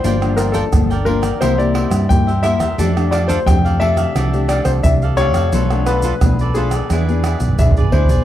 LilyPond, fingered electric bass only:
\new Staff \with { instrumentName = "Fingered electric bass" } { \clef bass \time 4/4 \key f \lydian \tempo 4 = 87 g,,4 g,,4 c,8. g,16 g,8. e,16 | f,4 f,4 c,8. c,16 c,8. f,16 | b,,4 b,,4 e,8. b,,16 b,,8 d,16 b,,16 | }